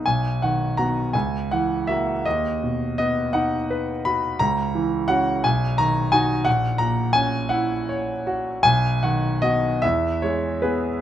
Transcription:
<<
  \new Staff \with { instrumentName = "Grand piano" } { \time 6/8 \key b \major \tempo 4. = 55 gis''8 fis''8 ais''8 gis''8 fis''8 e''8 | dis''4 dis''8 fis''4 b''8 | ais''4 fis''8 gis''8 ais''8 gis''8 | fis''8 ais''8 gis''8 fis''8 r4 |
gis''8 fis''8 dis''8 e''8 cis''8 b'8 | }
  \new Staff \with { instrumentName = "Grand piano" } { \time 6/8 \key b \major b,,8 dis8 <b fis'>8 cis,8 e8 <ais fis'>8 | dis,8 b,8 b8 dis'8 b'8 fis'8 | cis,8 e8 <cis' fis'>8 b,,8 dis8 <dis' fis'>8 | ais,,8 ais,8 cis'8 e'8 cis''8 fis'8 |
b,,8 dis8 <b fis'>8 e,8 gis8 <b gis'>8 | }
>>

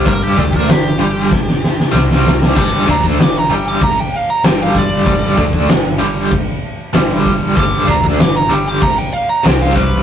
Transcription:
<<
  \new Staff \with { instrumentName = "Lead electric guitar" } { \time 4/4 \key c \lydian \tempo 4 = 96 bes'16 g'8 bes'16 g'2 r4 | d'''8 bes''16 r16 d'''16 bes''16 g''16 d'''16 bes''16 g''16 f''16 bes''16 g''16 f''16 d''8~ | d''8 r2. r8 | d'''8 bes''16 r16 d'''16 bes''16 g''16 d'''16 bes''16 g''16 f''16 bes''16 g''16 f''16 b'8 | }
  \new Staff \with { instrumentName = "Overdriven electric guitar" } { \clef bass \time 4/4 \key c \lydian <g, d g>8 <d a d'>8 <g, d>8 <g, d g>8 r4 <c g c'>4 | <g, d g>8 <d a d'>8 <g, d>8 <g, d g>8 r4 <g, d g>4 | <g, d g>8 <d a d'>8 <g, d>8 <g, d g>8 r4 <g, d g>4 | <g, d g>8 <d a d'>8 <g, d>8 <g, d g>8 r4 <c g c'>4 | }
  \new Staff \with { instrumentName = "Fingered electric bass" } { \clef bass \time 4/4 \key c \lydian g,,8 d,8 g,,8 g,,8 r4 c,4 | g,,8 d,8 g,,8 g,,8 r4 g,,4 | g,,8 d,8 g,,8 g,,8 r4 g,,4 | g,,8 d,8 g,,8 g,,8 r4 c,4 | }
  \new DrumStaff \with { instrumentName = "Drums" } \drummode { \time 4/4 <hho bd>8 bd16 bd16 <hho sn>4 <bd sn>16 sn16 sn16 sn16 sn16 sn16 sn16 sn16 | <cymc bd>8 bd16 bd16 <cymc sn>4 <cymc bd>4 <cymc sn>8 bd8 | <cymc bd>8 bd16 bd16 <cymc sn>4 <cymc bd>4 <cymc sn>8 bd8 | <cymc bd>8 bd16 bd16 <cymc sn>4 <cymc bd>4 <cymc sn>16 sn16 bd8 | }
>>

